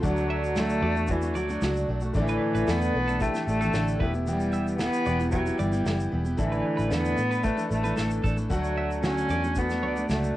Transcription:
0.01 D2 D3 F#3 A3 D4 F#4 D5, kick, shaker
0.07 F#3
0.17 shaker
0.30 E5
0.44 shaker
0.56 D3 F#3 A3 D4 F#4, snare, shaker
0.69 shaker
0.82 E2 F#3 A3 D4 F#4 D5
0.95 A3 D4 F#4, shaker
1.07 E3 A3 D4 F#4 D5, kick, shaker
1.22 A3 D4 F#4, shaker
1.35 D2 F#3 A3 D4 F#4 D5, shaker
1.49 A3 D4 F#4, shaker
1.62 C#2 D3 F#3 A3 D4 F#4, snare, shaker
1.76 shaker
1.88 B1 F#3 A3 D4 F#4
2.01 A3 D4 F#4, shaker
2.13 A1 A2 D3 E3 A3 D4 E4 A4 D5, kick, shaker
2.28 B4, shaker
2.55 A1 B4, shaker
2.67 E2 A2 D3 E3 A3 B3 D4 A4, snare, shaker
2.81 shaker
2.95 B1 E3 A3 D4 A4
3.07 E3 A3 D4 A4, shaker
3.20 A3 D4 E4 G4 B4, kick, shaker
3.34 E3 A3 D4 A4, snare, shaker
3.47 A1 E3 A3 D4 A4, shaker
3.61 E3 A3 D4 A4, shaker
3.73 A1 A2 D3 E3 A3 D4 A4, snare, shaker
3.88 shaker
3.99 E1 E3 B3 E4 G4 B4 E5, kick
4.14 B3 E4 G4, shaker
4.27 E3 G3 B3 E4 G4, shaker
4.40 shaker
4.53 E5, shaker
4.67 shaker
4.79 E3 B3 E4 G4, snare, shaker
4.93 shaker
5.06 E1 E3 B3 E4 G4 D5, shaker
5.20 B3 E4 G4, shaker
5.31 F#3 B3 E4 G4 B4, kick, shaker
5.46 B3 E4 G4, shaker
5.58 G1 E3 G3 B3 E4 G4 D5, shaker
5.72 B3 E4 G4, shaker
5.85 F#1 E3 B3 E4 G4, snare, shaker
6.00 shaker
6.12 E1 E3 B3 E4 G4
6.24 B3 E4 G4, shaker
6.37 A1 A2 D3 E3 A3 D4 E4 A4 E5, kick, shaker
6.52 B4, shaker
6.77 A1 B4, shaker
6.90 E2 A2 D3 E3 A3 B3 D4 A4, snare, shaker
7.05 shaker
7.17 A2 E3 A3 D4 A4, shaker
7.31 B4, shaker
7.43 A3 D4 E4 A4 B4, kick, shaker
7.56 E3 A3 D4 A4, shaker
7.69 A1 E3 A3 D4 A4, shaker
7.83 E3 A3 D4 A4 B4, shaker
7.96 A1 A2 D3 E3 A3 D4 A4, snare, shaker
8.10 shaker
8.23 A1 E3 A3 D4 A4, kick, shaker
8.37 E3 A3 D4 A4, shaker
8.49 D2 D3 F#3 A3 D4 F#4 A4 F#5, kick, shaker
8.64 shaker
8.78 E5
8.91 shaker
9.03 D3 F#3 A3 C#4 D4 F#4, snare, shaker
9.18 shaker
9.29 E2 F#3 A3 D4 F#4 D5, shaker
9.43 A3 D4 F#4, shaker
9.55 B3 D4 F#4 A4 F#5, kick, shaker
9.70 A3 D4 F#4, snare, shaker
9.82 D2 F#3 A3 D4 F#4 D5
9.96 A3 D4 F#4, shaker
10.09 C#2 D3 F#3 A3 D4 F#4, snare, shaker
10.24 shaker

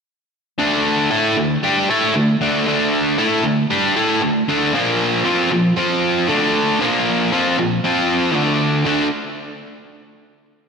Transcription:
0.58 D3 A3 D4
1.10 A3 E4 A4
1.36 D3 A3
1.63 G3 D4 G4
1.90 A3 E4 A4
2.15 D3 A3
2.41 D3 A3 D4
2.66 D3 A3 D4
3.18 A3 E4 A4
3.44 D3 A3
3.70 G3 D4 G4
3.96 A3 E4 A4
4.21 D3 A3
4.48 D3 A3 D4
4.73 A#2 F3 A#3
5.25 F3 C4 F4
5.52 A#2 F3
5.77 F3 C4 F4
6.29 D3 A3 D4
6.80 A#2 F3 A#3
7.32 F3 C4 F4
7.58 A#2 F3
7.84 F3 C4 F4
8.34 D3 A3 D4
8.85 D3 A3 D4

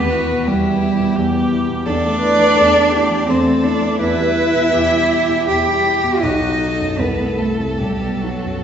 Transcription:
Already playing: E2 B3 G4 B4
0.11 E4 F#4
0.31 B2
0.46 E2 G3 E4 G4
0.65 B3
0.82 E4
1.00 B2
1.16 E2 G4
1.34 B3
1.52 E4
1.69 B2
1.86 E2 D4 A4 D5
2.05 A3
2.20 E4 B4
2.39 E3
2.56 E2 A4
2.76 A3
2.92 E4 G4
3.11 E3
3.27 E2 C4 A4 C5
3.46 A3
3.64 D4 E4 D5
3.82 E3
4.00 E2 E4 B4 E5
4.18 G3
4.37 E4
4.54 B2
4.72 E2 G4
4.92 G3
5.11 E4
5.29 B2
5.48 E2 E4 G4 G5
5.66 G3
5.86 E4
6.04 B2
6.22 B1 D#4 F#4 D#5
6.41 F#3
6.59 F#4 A4
6.79 F#2
6.99 C2 B3 B4
7.18 A3
7.38 A3 E4 A4
7.60 C3
7.78 B1 G3 G4
8.01 B3
8.22 F#3 D#4 F#4
8.44 F#2

